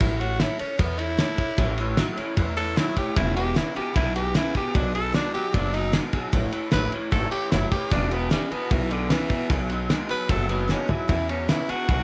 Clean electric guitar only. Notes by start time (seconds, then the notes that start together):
1.59 A2 E3
1.78 A2 E3
1.98 A2 F#3
2.18 A2 E3
2.38 A2 E3
2.57 A2 E3
2.76 A2 F#3
2.96 A2 E3
3.17 B2
3.36 E2 B2
3.56 E2 C#3
3.75 E2 B2
3.96 E2 B2
4.15 E2 B2
4.35 E2 C#3
4.54 E2 B2
4.75 B2 F#3
4.94 B2 F#3
5.15 B2 G#3
5.35 B2 F#3
5.54 B2 F#3
5.74 B2 F#3
5.93 B2 G#3
6.14 B2 F#3
6.33 A2 E3
6.53 A2 E3
6.72 A2 F#3
6.92 A2 E3
7.11 A2 E3
7.32 A2 E3
7.51 A2 F#3
7.72 A2 E3
7.92 E2 B2
8.12 E2 B2
8.32 E2 C#3
8.51 E2 B2
8.71 E2 B2
8.91 E2 B2
9.10 E2 C#3
9.30 E2 B2
9.50 B2 F#3
9.70 B2 F#3
9.90 B2 G#3
10.09 B2 F#3
10.29 B2 F#3
10.49 B2 F#3
10.70 B2 G#3
10.89 B2 F#3
11.09 E2 B2
11.29 E2 B2
11.49 E2 C#3
11.69 E2 B2
11.88 E2 B2